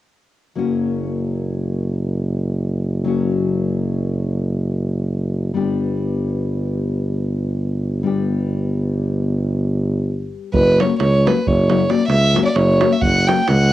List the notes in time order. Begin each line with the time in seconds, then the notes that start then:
0.55 F#1 F#3 A#3 C#4 F#4
3.04 F#3 A#3 C#4 F#4
5.54 G1 G3 B3 D4 G4
8.03 G3 B3 D4 G4
10.53 F#1 B4, davul low
10.67 davul high
10.79 F#3 A#3 C#4 F#4 C#5, davul high
10.90 davul high
10.99 C#2 C#5, davul high
11.14 davul high
11.25 F#3 A#3 C#4 F#4 B4, davul high
11.37 davul high
11.46 F#1 C#5, davul low
11.69 F#3 A#3 C#4 F#4, davul high
11.80 davul high
11.89 F#3 A#3 C#4 F#4 D5, davul high
12.00 davul high
12.08 C#2 E5, davul high
12.34 F#3 A#3 C#4 F#4, davul high
12.45 D5, davul high
12.55 F#1 C#5, davul high
12.68 davul high
12.81 F#3 A#3 C#4 F#4, davul high
12.91 E5, davul high
13.01 F#1 F#5, davul low
13.15 davul high
13.27 F#3 A#3 C#4 F#4 G5, davul high
13.38 davul high
13.48 C#2 F#5, davul high
13.61 davul high